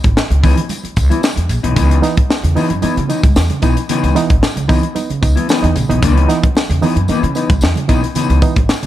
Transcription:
0.04 upright bass G#1, muted clean electric guitar stroke, kick, closed hi-hat, high conga
0.16 muted clean electric guitar stroke, muted upright bass stroke, snare, tambourine
0.30 upright bass C#2, muted clean electric guitar stroke, closed hi-hat, muted conga
0.43 clean electric guitar E3 B3 D#4, kick, open hi-hat, tambourine, low conga
0.57 muted clean electric guitar stroke, closed hi-hat, low conga
0.69 muted clean electric guitar stroke, closed hi-hat, tambourine, muted conga, high conga
0.84 muted clean electric guitar stroke, muted upright bass stroke, closed hi-hat, muted conga
0.96 upright bass C#2, kick, closed hi-hat, tambourine
1.10 clean electric guitar E3 B3 E4, closed hi-hat, tambourine, high conga
1.23 snare, tambourine
1.36 upright bass E2, muted clean electric guitar stroke, closed hi-hat, muted conga, high conga
1.49 upright bass A#1, closed hi-hat, tambourine
1.63 upright bass B1, clean electric guitar E3 B3 D#4, closed hi-hat
1.76 upright bass C#2, reed electric piano C#3, clean electric guitar E3 B3 D#4, kick, closed hi-hat, tambourine, muted conga, low conga
1.90 closed hi-hat, muted conga
2.02 reed electric piano E3 B3 D#4, snare, closed hi-hat, tambourine
2.17 reed electric piano B3 D#4, muted clean electric guitar stroke, muted upright bass stroke, kick, closed hi-hat, high conga
2.29 reed electric piano B3 D#4, muted clean electric guitar stroke, snare, tambourine
2.43 upright bass E2, reed electric piano C#3, muted clean electric guitar stroke, closed hi-hat, muted conga
2.56 reed electric piano E3 B3 D#4, clean electric guitar E3 B3 D#4, open hi-hat, tambourine, low conga
2.70 upright bass F#2, muted clean electric guitar stroke, closed hi-hat
2.82 clean electric guitar E3 B3 E4, reed electric piano B3 D#4, muted upright bass stroke, closed hi-hat, tambourine, muted conga, high conga
2.96 reed electric piano C#3, upright bass C#3, muted clean electric guitar stroke, closed hi-hat, muted conga
3.09 clean electric guitar E3 B3 D#4, reed electric piano B3 D#4, closed hi-hat, tambourine
3.23 upright bass C#2, muted clean electric guitar stroke, kick, closed hi-hat, tambourine, high conga
3.36 upright bass E2, reed electric piano B3 D#4, snare, tambourine, muted conga
3.49 reed electric piano C#3, muted clean electric guitar stroke, closed hi-hat, high conga
3.62 upright bass B1, reed electric piano E3 B3 D#4, clean electric guitar E3 B3 D#4, kick, closed hi-hat, tambourine
3.77 muted clean electric guitar stroke, closed hi-hat, tambourine
3.89 reed electric piano C#3, clean electric guitar E3 B3 D#4, closed hi-hat, tambourine, low conga
4.03 upright bass C#2, closed hi-hat, tambourine, muted conga
4.15 reed electric piano E3 B3 D#4, snare, closed hi-hat, tambourine
4.29 upright bass G#1, reed electric piano B3 D#4, muted clean electric guitar stroke, kick, closed hi-hat, high conga
4.42 reed electric piano B3 D#4, muted clean electric guitar stroke, muted upright bass stroke, snare, tambourine, muted conga
4.56 upright bass C#2, reed electric piano C#3, muted clean electric guitar stroke, closed hi-hat, muted conga
4.68 clean electric guitar E3 B3 D#4, reed electric piano E3 B3 D#4, kick, open hi-hat, tambourine, low conga
4.82 muted clean electric guitar stroke, closed hi-hat
4.95 reed electric piano B3 D#4, muted clean electric guitar stroke, closed hi-hat, tambourine, muted conga, high conga
5.09 reed electric piano C#3, muted clean electric guitar stroke, muted upright bass stroke, closed hi-hat, muted conga
5.22 upright bass C#2, reed electric piano B3 D#4, kick, closed hi-hat, tambourine
5.36 clean electric guitar E3 B3 E4, closed hi-hat, high conga
5.49 clean electric guitar E3 B3 D#4, snare, tambourine
5.62 upright bass E2, reed electric piano E3 B3 D#4, closed hi-hat, high conga
5.75 upright bass A#1, reed electric piano C#3, muted clean electric guitar stroke, closed hi-hat, tambourine
5.89 upright bass B1, reed electric piano E3 B3 D#4, clean electric guitar E3 B3 D#4, closed hi-hat
6.02 upright bass C#2, reed electric piano C#3, clean electric guitar E3 B3 D#4, kick, closed hi-hat, tambourine, muted conga, low conga
6.17 closed hi-hat
6.28 reed electric piano E3 B3 D#4, snare, closed hi-hat, tambourine
6.43 reed electric piano B3 D#4, muted clean electric guitar stroke, muted upright bass stroke, kick, closed hi-hat, high conga
6.55 reed electric piano B3 D#4, muted clean electric guitar stroke, snare, tambourine, muted conga
6.69 upright bass E2, reed electric piano C#3, muted clean electric guitar stroke, closed hi-hat, muted conga
6.82 reed electric piano E3 B3 D#4, clean electric guitar E3 B3 D#4, open hi-hat, tambourine, low conga
6.96 upright bass F#2, muted clean electric guitar stroke, closed hi-hat
7.08 clean electric guitar E3 B3 E4, reed electric piano B3 D#4, muted upright bass stroke, closed hi-hat, tambourine, high conga
7.23 reed electric piano C#3, upright bass C#3, muted clean electric guitar stroke, closed hi-hat, muted conga
7.35 clean electric guitar E3 B3 D#4, reed electric piano B3 D#4, closed hi-hat, tambourine
7.50 upright bass C#2, muted clean electric guitar stroke, kick, closed hi-hat, tambourine, high conga
7.61 upright bass E2, reed electric piano B3 D#4, snare, tambourine, muted conga
7.76 reed electric piano C#3, muted clean electric guitar stroke, closed hi-hat, muted conga, high conga
7.88 upright bass B1, reed electric piano E3 B3 D#4, clean electric guitar E3 B3 D#4, kick, closed hi-hat, tambourine
8.03 muted clean electric guitar stroke, closed hi-hat
8.15 reed electric piano C#3, clean electric guitar E3 B3 D#4, closed hi-hat, tambourine, muted conga, low conga
8.30 upright bass C#2, closed hi-hat, tambourine, muted conga
8.42 reed electric piano E3 B3 D#4, kick, closed hi-hat, tambourine
8.56 upright bass G#1, reed electric piano B3 D#4, muted clean electric guitar stroke, kick, closed hi-hat, high conga
8.69 reed electric piano B3 D#4, muted upright bass stroke, muted clean electric guitar stroke, snare, tambourine, muted conga
8.83 upright bass C#2, reed electric piano C#3, closed hi-hat

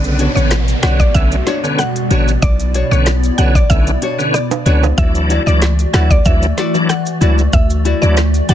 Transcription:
Already playing: 808-style bass B1, analog synth pad B2 B3 F#4 D5, tonewheel organ C#3 D3 B3, synth pluck D5, downlifter
0.04 closed hi-hat, maracas
0.19 nylon-string guitar D4 F#4 C#5, closed hi-hat, maracas
0.35 808-style bass A1, tonewheel organ D3 B3 C#4, synth pluck C#5, maracas
0.51 cross-stick, snare, closed hi-hat, maracas
0.68 closed hi-hat, maracas
0.83 808-style bass B1, tonewheel organ D3 B3 C#4, nylon-string guitar D4 F#4 C#5, synth pluck F#5, cross-stick, snare, closed hi-hat
1.00 synth pluck D5, kick, maracas
1.14 808-style bass B1, tonewheel organ D3 B3 C#4, synth pluck E5, kick, closed hi-hat, maracas
1.32 closed hi-hat, maracas
1.47 nylon-string guitar D4 F#4 C#5, snare, closed hi-hat
1.64 tonewheel organ D3 B3 C#4, maracas
1.79 synth pluck F#5, cross-stick, closed hi-hat, maracas
1.96 closed hi-hat, maracas
2.10 808-style bass A1, tonewheel organ D3 B3 C#4, nylon-string guitar D4 F#4 C#5, closed hi-hat, maracas
2.28 maracas
2.42 808-style bass B1, analog synth pad E4, synth pluck D5, kick, closed hi-hat, maracas
2.60 closed hi-hat, maracas
2.74 nylon-string guitar D4 F#4 C#5, closed hi-hat, maracas
2.91 808-style bass B1, tonewheel organ D3 B3 C#4, synth pluck C#5, maracas
3.06 cross-stick, snare, closed hi-hat, maracas
3.23 closed hi-hat, maracas
3.38 808-style bass B1, tonewheel organ D3 B3 C#4, nylon-string guitar D4 F#4 C#5, synth pluck F#5, closed hi-hat
3.55 synth pluck D5, kick, maracas
3.70 808-style bass B1, tonewheel organ D3 B3 C#4, synth pluck E5, kick, closed hi-hat, maracas
3.87 closed hi-hat, maracas
4.02 nylon-string guitar D4 F#4 C#5, closed hi-hat
4.19 tonewheel organ D3 B3 C#4, maracas
4.34 synth pluck D5, cross-stick, closed hi-hat, maracas
4.51 closed hi-hat, high timbale, maracas
4.66 808-style bass C#2, tonewheel organ D3 B3 C#4, nylon-string guitar D4 F#4 C#5, closed hi-hat, maracas
4.83 high timbale, maracas
4.98 808-style bass D2, tonewheel organ E3 F#3 D4, analog synth pad E3 A3 F#4 D5, synth pluck E5, kick, closed hi-hat, maracas
5.15 closed hi-hat, maracas
5.30 nylon-string guitar E4 F#4 D5, closed hi-hat, maracas
5.46 808-style bass C#2, tonewheel organ E3 F#3 D4, synth pluck D5, maracas
5.62 cross-stick, snare, closed hi-hat, maracas
5.79 closed hi-hat, maracas
5.93 808-style bass D2, tonewheel organ E3 F#3 D4, nylon-string guitar E4 F#4 D5, synth pluck F#5, cross-stick, snare, closed hi-hat
6.10 synth pluck D5, kick, maracas
6.25 808-style bass D2, tonewheel organ E3 F#3 D4, synth pluck E5, kick, closed hi-hat, maracas
6.42 closed hi-hat, maracas
6.57 nylon-string guitar E4 F#4 D5, snare, closed hi-hat
6.74 tonewheel organ E3 F#3 D4, maracas
6.89 synth pluck F#5, cross-stick, closed hi-hat, maracas
7.06 closed hi-hat, maracas
7.21 808-style bass C#2, tonewheel organ E3 F#3 D4, nylon-string guitar E4 F#4 D5, closed hi-hat, maracas
7.38 maracas
7.53 808-style bass D2, synth pluck E5, kick, closed hi-hat, maracas
7.70 closed hi-hat, maracas
7.85 nylon-string guitar E4 F#4 D5, closed hi-hat, maracas
8.02 808-style bass D2, tonewheel organ E3 F#3 D4, synth pluck D5, maracas
8.17 cross-stick, snare, closed hi-hat, maracas
8.34 closed hi-hat, maracas
8.49 808-style bass D2, tonewheel organ E3 F#3 D4, nylon-string guitar E4 F#4 D5, synth pluck F#5, closed hi-hat, maracas

